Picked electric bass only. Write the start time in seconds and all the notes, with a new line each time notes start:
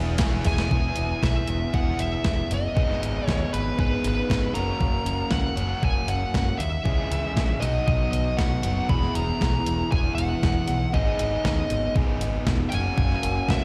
Already playing: E1
0.20 E1
0.45 E1
0.71 E1
0.97 E1
1.23 B1
1.48 E1
1.74 E1
1.98 E1
2.25 E1
2.51 F#1
2.76 G#1
3.02 G#1
3.28 D#2
3.53 G#1
3.79 G#1
4.04 G#1
4.30 G#1
4.55 F#1
4.80 F#1
5.05 F#1
5.32 C#2
5.56 F#1
5.82 F#1
6.07 F#1
6.34 F#1
6.59 D#2
6.86 C#2
7.11 C#2
7.36 A#1
7.62 B1
7.87 B1
8.12 B1
8.38 B1
8.64 F#1
8.89 E1
9.15 E1
9.41 B1
9.67 E1
9.92 E1
10.17 E1
10.43 E1
10.68 B1
10.94 G#1
11.20 G#1
11.45 D#2
11.71 G#1
11.95 G#1
12.21 G#1
12.46 E1
12.73 F#1
12.98 F#1
13.23 F#1
13.48 C#2